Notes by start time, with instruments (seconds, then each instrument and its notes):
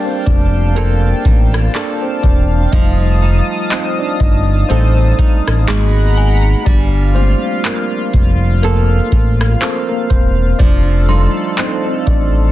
Already playing: nylon-string guitar G3 A#3 F4, tine electric piano A#3 D4 F4 A4 D5, synth bell C5, analog synth pad F5 G5 A5
0.05 tine electric piano C4 C5
0.26 analog synth bass F1, tine electric piano D4 D5, kick, closed hi-hat
0.75 nylon-string guitar A#3 F4 A4, tine electric piano A#3 A#4, closed hi-hat
1.25 analog synth bass A1, nylon-string guitar D#4, kick, closed hi-hat
1.54 nylon-string guitar F4, cross-stick
1.74 nylon-string guitar A#3 F4 A4, tine electric piano D4 D5, clap, closed hi-hat
2.02 tine electric piano C4 C5
2.23 analog synth bass E1, tine electric piano D4 D5, kick, closed hi-hat
2.72 analog synth bass F1, nylon-string guitar F3, tine electric piano G3 A3 D#4 D#5, analog synth pad D#6, kick, closed hi-hat
3.22 nylon-string guitar D#4
3.70 nylon-string guitar C4, tine electric piano D#4 D#5, clap, closed hi-hat
3.99 tine electric piano D4 D5
4.20 analog synth bass G1, tine electric piano D#4 D#5, kick, closed hi-hat
4.69 analog synth bass A1, tine electric piano G3 A3 C4 D#4 C5, nylon-string guitar C4 D#4 A4, closed hi-hat
5.19 nylon-string guitar D#4, kick, closed hi-hat
5.48 analog synth bass A1, cross-stick
5.67 analog synth bass G#1, nylon-string guitar G#3, tine electric piano A#3 B3 D#4 F#4 D#5, analog synth pad F#5 A#5 B5, clap, closed hi-hat
6.17 synth bell G#5, closed hi-hat
6.65 analog synth bass G1, nylon-string guitar G3, tine electric piano D4 D5, analog synth pad F4 F5, kick, closed hi-hat
7.15 tine electric piano A3 A#3 C4 F4 C5, nylon-string guitar F4
7.65 nylon-string guitar A#3, clap, closed hi-hat
8.14 analog synth bass F1, kick, closed hi-hat
8.62 nylon-string guitar A#3 F4 A4, tine electric piano A#3 A#4, closed hi-hat
9.12 analog synth bass A1, nylon-string guitar F4, kick, closed hi-hat
9.41 cross-stick
9.61 nylon-string guitar A#3 F4 A4, tine electric piano C4 C5, clap, closed hi-hat
9.89 tine electric piano A#3 A#4
10.10 analog synth bass E1, tine electric piano C4 C5, kick, closed hi-hat
10.59 analog synth bass F1, nylon-string guitar F3, tine electric piano D4 D5, analog synth pad A4, kick, closed hi-hat
11.09 tine electric piano G3 A3, nylon-string guitar D#4, synth bell C6
11.57 nylon-string guitar C4, tine electric piano D#4 D#5, clap, closed hi-hat
11.86 tine electric piano C4 C5
12.06 analog synth bass A1, tine electric piano D4 D5, kick, closed hi-hat